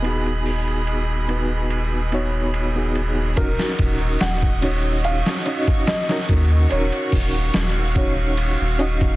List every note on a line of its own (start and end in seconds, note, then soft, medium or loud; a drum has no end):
0.00 3.34 D#1 medium
0.00 1.24 B3 medium
0.00 3.34 G#4 medium
0.00 3.34 D#5 medium
0.00 3.34 B5 medium
0.04 1.24 D#4 medium
0.04 1.25 F#4 medium
0.04 1.26 G#4 medium
0.04 ride medium
0.26 ride soft
0.46 open hi-hat medium
0.68 ride soft
0.87 ride medium
1.28 2.08 B3 medium
1.28 2.09 D#4 medium
1.28 2.09 F#4 medium
1.28 2.09 B4 medium
1.28 ride medium
1.70 ride medium
2.12 2.70 B3 medium
2.12 2.71 D#4 medium
2.12 2.71 F#4 medium
2.12 2.72 C#5 medium
2.12 ride medium
2.54 ride medium
2.76 3.33 B3 medium
2.76 3.33 D#4 medium
2.76 3.33 F#4 medium
2.76 3.34 G#4 medium
2.95 ride medium
3.36 3.57 D#1 loud
3.36 4.57 C#4 medium
3.36 4.58 D#4 medium
3.36 9.16 F#4 medium
3.36 4.59 F#4 medium
3.36 4.23 A#4 medium
3.36 6.68 D#5 medium
3.36 9.16 C#6 medium
3.36 kick loud
3.36 ride medium
3.41 4.59 A#4 loud
3.59 snare soft
3.79 4.16 D#1 loud
3.79 kick medium
3.79 ride medium
4.21 5.22 D#1 medium
4.21 5.07 F#5 loud
4.21 snare loud
4.21 ride medium
4.42 kick loud
4.62 5.42 C#4 medium
4.62 5.42 D#4 medium
4.62 5.42 F#4 medium
4.62 5.43 C#5 medium
4.62 ride medium
5.04 5.84 F5 medium
5.04 ride medium
5.26 snare medium
5.46 6.04 C#4 medium
5.46 6.04 D#4 medium
5.46 6.05 F#4 medium
5.46 6.05 D#5 loud
5.46 ride medium
5.67 kick medium
5.87 6.73 D#5 loud
5.87 snare loud
5.87 ride medium
6.09 6.66 C#4 medium
6.09 6.66 D#4 medium
6.09 6.67 F#4 medium
6.09 6.67 A#4 medium
6.09 snare medium
6.29 6.66 D#2 medium
6.29 kick medium
6.29 ride medium
6.70 6.90 D#1 loud
6.70 7.90 C#4 medium
6.70 7.91 D#4 medium
6.70 7.92 F#4 medium
6.70 7.92 C#5 medium
6.70 9.16 F5 medium
6.70 ride medium
6.74 7.93 A#4 loud
6.92 ride soft
7.12 7.49 D#1 loud
7.12 kick loud
7.12 open hi-hat medium
7.34 ride soft
7.54 8.55 D#1 medium
7.54 snare loud
7.54 ride medium
7.95 8.75 C#4 medium
7.95 8.75 D#4 medium
7.95 8.76 F#4 medium
7.95 8.76 C#5 medium
7.95 kick medium
7.95 ride medium
8.37 ride medium
8.60 9.16 D#1 medium
8.79 9.16 C#4 medium
8.79 9.16 D#4 medium
8.79 9.16 F#4 medium
8.79 9.16 D#5 loud
8.79 ride medium
9.01 kick medium